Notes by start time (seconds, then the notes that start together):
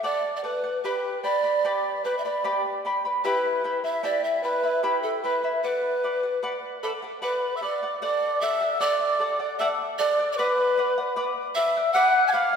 0.03 A4 D5 F#5
0.36 D5
0.44 A4 B4 D5 F#5
0.64 D5 F#5
0.84 G4 B4 D5 G5 B5
1.23 B4 D5 G5 B5
1.44 B4 D5 B5
1.64 G4 B4 D5 G5 B5
2.04 B4 D5 G5 B5
2.18 E5
2.24 B4 D5 B5
2.44 G4 B4 D5 G5 B5
2.85 B4 D5 G5 B5
3.05 B4 D5 B5
3.24 E4 G4 B4 E5 G5 B5
3.64 E4 E5 G5 B5
3.84 E4 E5 B5
4.03 E4 G4 D5 E5 G5 B5
4.24 E5
4.43 E4 B4 E5 G5 B5
4.63 E4 E5 B5
4.83 E4 G4 E5 G5 B5
5.03 A4
5.23 E4 B4 E5 G5 B5
5.44 E4 E5 B5
5.63 B4 D5 F#5
6.03 B4 D5 F#5
6.23 D5 F#5
6.43 B4 D5 F#5
6.83 A4 B4 D5 F#5 A5
7.02 D5 F#5
7.22 B4 D5 F#5 B5
7.56 E5 E6
7.61 B4 D5 F#5 D6
7.83 D5 F#5
8.02 A4 D5 F#5 D6
8.41 A4 D5 E5 F#5 E6
8.61 D5 F#5
8.80 A4 D5 F#5 D6
9.20 A4 D5 F#5
9.40 D5 F#5
9.59 A4 D5 E5 F#5 E6
9.98 A4 D5 F#5 D6
10.18 D5 F#5
10.32 D5 D6
10.37 B4 D5 F#5 B5
10.78 B4 D5 F#5
10.98 D5 F#5
11.16 B4 D5 F#5
11.55 B4 D5 E5 F#5 E6
11.77 D5 F#5
11.93 B4 D5 F#5 F#6
12.27 F5 G#5 G#6
12.33 B4 D5 F#5 F6
12.53 F#5